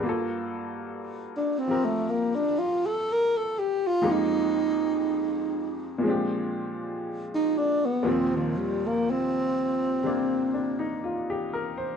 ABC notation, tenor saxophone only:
X:1
M:4/4
L:1/16
Q:"Swing" 1/4=60
K:Gm
V:1 name="Tenor saxophone"
z4 z D C A, B, D F A B A G F | E8 z4 z E D _C | C E, G, B, C8 z4 |]